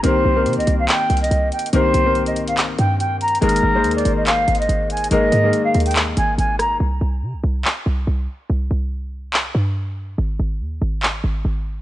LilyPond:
<<
  \new Staff \with { instrumentName = "Flute" } { \time 4/4 \key aes \lydian \tempo 4 = 142 c''4~ c''16 ees''8 f''16 g''8. ees''8. g''8 | c''4~ c''16 ees''8 f''16 r8 g''8 g''8 bes''8 | bes'4~ bes'16 d''8 ees''16 f''8. ees''8. aes''8 | ees''4~ ees''16 f''8 g''16 r8 aes''8 aes''8 bes''8 |
r1 | r1 | r1 | }
  \new Staff \with { instrumentName = "Grand piano" } { \time 4/4 \key aes \lydian <ees bes c' g' bes'>8. <ees bes c' g' bes'>4.~ <ees bes c' g' bes'>16 r4. | <ees bes c' g' bes'>8. <ees bes c' g' bes'>4.~ <ees bes c' g' bes'>16 r4. | <ees aes bes aes' bes'>8. <ees aes bes aes' c''>4.~ <ees aes bes aes' c''>16 r4. | <ees aes bes aes' bes'>8. <ees aes bes aes' bes'>4.~ <ees aes bes aes' bes'>16 r4. |
r1 | r1 | r1 | }
  \new Staff \with { instrumentName = "808-style bass" } { \clef bass \time 4/4 \key aes \lydian c,8 c,8 c16 c,16 c,8 r8 c,8 c,8 r8 | c,8 c,2 g,4. | aes,,8 aes,,8 ees,8 aes,,4 aes,,8 aes,,4 | aes,,8 aes,8 r8 ees,4 aes,,8 aes,,4 |
c,8 c,8 c16 c,16 c,8 r8 c,8 c,8 r8 | c,8 c,2 g,4. | aes,,8 aes,,8 ees,8 aes,,4 aes,,8 aes,,4 | }
  \new DrumStaff \with { instrumentName = "Drums" } \drummode { \time 4/4 hh4 \tuplet 3/2 { hh16 hh16 hh16 hh16 r16 r16 <hc hh>16 r16 r16 hh16 hh16 hh16 hh16 r16 r16 hh16 hh16 hh16 } | hh8 hh8 hh16 hh16 <hh hho>16 hh16 <hc hh>8 hh8 \tuplet 3/2 { hh16 r16 r16 hh16 hh16 hh16 } | \tuplet 3/2 { hh16 hh16 hh16 r16 r16 r16 hh16 hh16 hh16 hh16 r16 r16 <hc hh>16 r16 r16 hh16 hh16 hh16 hh16 r16 r16 hh16 hh16 hh16 } | hh8 hh8 hh8 <hh hho>32 hh32 hh32 hh32 <hc hh>8 hh8 hh8 <hh ss>8 |
r4 r4 hc4 r4 | r4 r4 hc4 r4 | r4 r4 hc4 r4 | }
>>